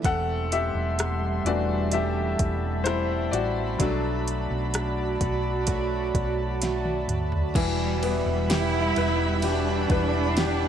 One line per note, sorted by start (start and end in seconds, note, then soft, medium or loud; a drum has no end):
0.02 0.71 E1 medium
0.02 1.90 E3 medium
0.02 3.75 G3 medium
0.02 1.92 A3 medium
0.02 1.92 C4 medium
0.02 1.92 G4 medium
0.02 0.49 A4 medium
0.02 3.76 E5 medium
0.02 0.53 F#5 medium
0.02 7.50 A5 medium
0.02 1.90 C6 medium
0.02 kick loud
0.02 closed hi-hat medium
0.52 1.42 G4 medium
0.52 1.49 E5 medium
0.52 closed hi-hat medium
0.75 1.41 E1 medium
0.99 cross-stick loud
0.99 closed hi-hat medium
1.45 2.35 E1 medium
1.45 2.82 E3 soft
1.45 2.83 A3 soft
1.45 2.83 D4 soft
1.45 1.90 F#4 medium
1.45 1.94 D5 medium
1.45 closed hi-hat medium
1.91 2.84 E3 soft
1.91 2.86 A3 soft
1.91 2.86 C4 medium
1.91 2.86 G4 medium
1.91 2.83 G4 medium
1.91 2.82 E5 medium
1.91 7.51 B5 medium
1.91 closed hi-hat medium
2.39 3.29 E1 medium
2.39 kick medium
2.39 closed hi-hat medium
2.84 3.80 E3 medium
2.84 3.81 A3 medium
2.84 3.81 C4 medium
2.84 3.30 E4 medium
2.84 3.81 G4 medium
2.84 3.29 C5 medium
2.84 cross-stick medium
2.84 closed hi-hat medium
3.31 3.76 A1 medium
3.31 4.70 F#4 medium
3.31 4.69 D5 medium
3.31 closed hi-hat medium
3.78 4.46 B1 loud
3.78 5.67 B2 medium
3.78 5.16 F#3 medium
3.78 5.66 F#3 medium
3.78 5.17 A3 soft
3.78 5.66 A3 medium
3.78 5.17 D4 medium
3.78 7.51 F#4 medium
3.78 7.50 D5 medium
3.78 kick loud
3.78 closed hi-hat medium
3.82 5.67 D4 medium
3.82 5.69 F#4 medium
4.28 closed hi-hat medium
4.50 5.17 B1 medium
4.74 cross-stick medium
4.74 closed hi-hat medium
5.21 6.11 B1 medium
5.21 kick medium
5.21 closed hi-hat medium
5.66 6.61 F#3 medium
5.66 6.61 A3 medium
5.66 6.62 D4 medium
5.66 6.63 F#4 medium
5.66 kick medium
5.66 closed hi-hat medium
6.15 7.04 B1 medium
6.15 kick medium
6.15 cross-stick soft
6.15 closed hi-hat medium
6.61 7.55 F#3 medium
6.61 7.55 A3 medium
6.61 7.56 D4 medium
6.61 7.57 F#4 medium
6.61 snare soft
6.61 closed hi-hat medium
6.85 high tom medium
7.08 7.52 D2 medium
7.08 closed hi-hat medium
7.08 mid tom medium
7.32 floor tom medium
7.53 8.22 E1 medium
7.53 9.42 E2 medium
7.53 9.43 B2 medium
7.53 10.68 E3 medium
7.53 9.41 E3 medium
7.53 10.68 G3 medium
7.53 8.45 G3 loud
7.53 9.42 G3 medium
7.53 10.68 E5 medium
7.53 10.68 F#5 medium
7.53 10.68 B5 medium
7.53 kick loud
7.53 crash medium
7.53 ride medium
7.57 9.42 E4 loud
7.57 9.44 F#4 medium
8.03 9.86 B3 medium
8.03 ride medium
8.26 8.92 E1 loud
8.49 9.43 E4 loud
8.49 9.42 G4 medium
8.49 snare loud
8.49 ride medium
8.96 9.86 E1 medium
8.96 9.90 B4 medium
8.96 ride medium
9.42 9.89 E3 medium
9.42 9.90 G3 medium
9.42 10.68 D4 loud
9.42 9.89 E4 medium
9.42 9.88 F#4 medium
9.42 10.36 G4 medium
9.42 ride medium
9.89 10.68 E1 medium
9.89 10.68 E3 medium
9.89 10.68 G3 medium
9.89 10.68 E4 medium
9.89 10.68 F#4 medium
9.89 10.68 B4 medium
9.89 kick loud
9.89 ride medium
10.37 10.68 G4 medium
10.37 snare loud
10.37 ride medium